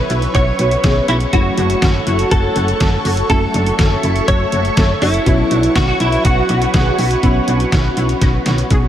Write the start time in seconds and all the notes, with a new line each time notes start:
Already playing: F#3 B3 C#4 A4 B4 C#5 E5 C#6
0.10 B1 E4, closed hi-hat
0.22 closed hi-hat
0.35 B1 F#4 C#5, kick, closed hi-hat
0.59 B1 F#4, closed hi-hat
0.71 closed hi-hat
0.84 B1 F#3 B3 C#4 G#4, kick, snare, closed hi-hat
1.08 B1 E4 F#4, closed hi-hat
1.20 closed hi-hat
1.33 F#1 F#3 A3 C#4 E4 F#4 A4 F#5, kick, closed hi-hat
1.58 F#1 D4, closed hi-hat
1.70 closed hi-hat
1.82 F#1 C#4, kick, snare, closed hi-hat
2.07 F#1 E4, closed hi-hat
2.19 closed hi-hat
2.31 F#1 F#4 A4, kick, closed hi-hat
2.56 F#1 F#4, closed hi-hat
2.68 closed hi-hat
2.80 F#1 A4, kick, snare, closed hi-hat
3.05 F#1 F#4, open hi-hat
3.17 closed hi-hat
3.30 F#1 F#3 A3 C#4 E4 F#4 A4 E5, kick, closed hi-hat
3.54 F#1 D4, closed hi-hat
3.67 closed hi-hat
3.79 F#1 C#4, kick, snare, closed hi-hat
4.03 F#1 E4, closed hi-hat
4.16 closed hi-hat
4.28 F#1 F#4 C#5, kick, closed hi-hat
4.52 F#1 F#4, closed hi-hat
4.65 closed hi-hat
4.77 F#1 A4, kick, snare, closed hi-hat
5.02 F#1 E4 F#4, open hi-hat
5.14 closed hi-hat
5.26 B1 F#3 B3 C#4 E4 F#4 B4 C#5 F#5, kick, closed hi-hat
5.51 B1 D4, closed hi-hat
5.63 closed hi-hat
5.75 B1 C#4 F#4, kick, snare, closed hi-hat
5.88 F#4
6.00 B1 E4, closed hi-hat
6.12 closed hi-hat
6.25 B1 F#4, kick, closed hi-hat
6.49 B1 F#4, closed hi-hat
6.62 closed hi-hat
6.74 B1 G#4, kick, snare, closed hi-hat
6.99 B1 F#4, open hi-hat
7.11 closed hi-hat
7.23 B1 F#3 B3 C#4 E4 F#4, kick, closed hi-hat
7.48 B1 D4, closed hi-hat
7.60 closed hi-hat
7.72 B1 C#4, kick, snare, closed hi-hat
7.97 B1 E4, closed hi-hat
8.09 closed hi-hat
8.22 B1 F#4, kick, snare, closed hi-hat
8.46 B1 F#4, snare, closed hi-hat
8.58 closed hi-hat
8.71 B1 G#4, kick, closed hi-hat